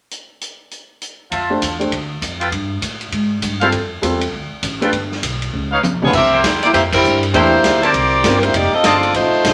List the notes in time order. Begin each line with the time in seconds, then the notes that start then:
0.11 closed hi-hat
0.41 closed hi-hat
0.71 closed hi-hat
1.02 closed hi-hat
1.31 F2 F4 C5 E5 A5, kick, ride
1.50 A3 D4 G4 C5
1.62 E2, kick, hi-hat pedal, ride
1.79 A3 D4 G4 C5, ride
1.92 D2, kick, ride
2.22 F2, kick, hi-hat pedal, ride
2.40 F4 A4 B4 G5, ride
2.52 G2, kick, ride
2.82 A2, kick, hi-hat pedal, ride
3.01 ride
3.12 G#2, kick, ride
3.42 G2, kick, hi-hat pedal, ride
3.61 G3 C4 E4 F4 A4 C5 F5, ride
3.72 F2, kick, ride
4.02 E2 G3 C4 F4 A4, kick, hi-hat pedal, ride
4.21 ride
4.33 D2, kick
4.52 muted upright bass stroke
4.63 A1, kick, hi-hat pedal, ride
4.81 A3 D4 F4 G4 A4 B4 G5, ride
4.93 G1, kick, ride
5.12 snare
5.22 B1, kick, hi-hat pedal, ride
5.42 ride
5.53 C#2, mid tom
5.72 D#4 B4 C#5 F5
5.83 C#2, hi-hat pedal, high tom
5.93 B1
6.02 G#1 C2 E3 A3 B3 D4 F4 G4 G#4 C#5, mid tom
6.13 C2 C4 G4 A#4 E5, kick, crash
6.33 E4 A#4 C5 G5
6.43 E2, kick, snare, hi-hat pedal, ride
6.63 A#3 E4 G4 D5, ride
6.73 F2 A#3 E4 G4 C5, kick, ride
6.93 G3 C4 E4 A#4, kick, crash
7.04 G2, hi-hat pedal
7.23 ride
7.33 E2 E3 A3 A#3 D4 E4 G4 A#4 C5 G5, kick, ride
7.63 D2, kick, snare, hi-hat pedal, ride
7.82 C4 E4 G4 A#4 C5 D5 A5, ride
7.93 C2, kick, ride
8.24 G1 G3 C4 F4 A#4, kick, snare, hi-hat pedal, ride
8.40 A#4 C5, ride
8.44 A#3 E4 G4
8.54 F1 A#3 D#4 G4 D5, kick, ride
8.73 C4 F4 A4 D#5, muted upright bass stroke
8.84 G1 C4 F4 A4 C5 D5 D#5 A5, kick, snare, hi-hat pedal, ride
9.03 ride
9.14 A1 A3 D#4 F4 C5, kick, ride
9.33 muted upright bass stroke
9.44 A#1, kick, snare, hi-hat pedal, ride